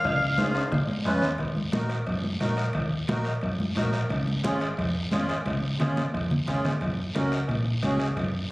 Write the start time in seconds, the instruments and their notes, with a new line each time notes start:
Already playing: oboe F5
0.04 fingered electric bass C#2, bombo low, bombo rim, cowbell, high conga, long guiro
0.38 accordion C#4 F4 G#4, bombo rim, cowbell, high conga, high timbale, short guiro
0.55 bombo rim, high timbale, short guiro
0.72 fingered electric bass G#1, bombo low, bombo rim, cowbell, high conga, low conga, long guiro
0.88 fingered electric bass G#2, low timbale
1.05 fingered electric bass F2, accordion C#4 F4 B4, bombo rim, cowbell, high conga, short guiro
1.22 fingered electric bass D#2, bombo rim, low timbale, short guiro
1.38 fingered electric bass D#2, bombo low, bombo rim, high conga, high timbale, long guiro
1.56 high conga
1.72 fingered electric bass A#1, accordion D#4 F#4 A#4, bombo rim, high conga, high timbale, short guiro
1.89 bombo rim, high timbale, short guiro
2.07 fingered electric bass F#2, bombo low, bombo rim, high conga, high timbale, long guiro
2.24 high conga
2.40 fingered electric bass A#1, accordion D#4 F#4 A#4, bombo rim, high conga, high timbale, short guiro
2.57 bombo rim, high timbale, short guiro
2.73 fingered electric bass D#2, bombo low, bombo rim, high conga, high timbale, long guiro
3.08 fingered electric bass A#1, accordion D#4 F#4 A#4, bombo rim, high conga, high timbale, short guiro
3.25 bombo rim, high timbale, short guiro
3.41 fingered electric bass F#2, bombo low, bombo rim, high conga, high timbale, long guiro
3.60 high conga
3.75 fingered electric bass A#1, accordion D#4 F#4 A#4, bombo low, bombo rim, high conga, high timbale, short guiro
3.93 bombo rim, high timbale, short guiro
4.09 fingered electric bass C#2, bombo low, bombo rim, high conga, high timbale, long guiro
4.28 high conga
4.43 fingered electric bass G#1, accordion C#4 F4 G#4, bombo rim, high conga, high timbale, short guiro
4.60 bombo rim, high timbale, short guiro
4.77 fingered electric bass F2, bombo low, bombo rim, high conga, high timbale, long guiro
5.11 fingered electric bass G#1, accordion C#4 F4 G#4, bombo rim, high conga, high timbale, low timbale, short guiro
5.29 bombo rim, high timbale, short guiro
5.46 fingered electric bass C#2, bombo low, bombo rim, high conga, high timbale, long guiro
5.79 fingered electric bass G#1, accordion C#4 F4 G#4, bombo rim, low conga, high timbale, short guiro
5.97 bombo rim, low conga, high timbale, short guiro
6.14 fingered electric bass F2, bombo low, bombo rim, high timbale, long guiro
6.31 low conga
6.47 fingered electric bass G#1, accordion C#4 F4 G#4, bombo low, bombo rim, low conga, high timbale, short guiro
6.65 bombo rim, low conga, high timbale, short guiro
6.81 fingered electric bass F#2, bombo low, bombo rim, high timbale, long guiro
7.14 fingered electric bass C#2, accordion C#4 F#4 A#4, bombo rim, high conga, high timbale, short guiro
7.32 bombo rim, high timbale, short guiro
7.48 fingered electric bass A#2, bombo low, bombo rim, high conga, high timbale, long guiro
7.83 fingered electric bass C#2, accordion C#4 F#4 G#4, bombo low, bombo rim, high conga, high timbale, short guiro
7.99 bombo rim, high timbale, short guiro
8.17 fingered electric bass F#2, bombo low, bombo rim, high conga, high timbale, long guiro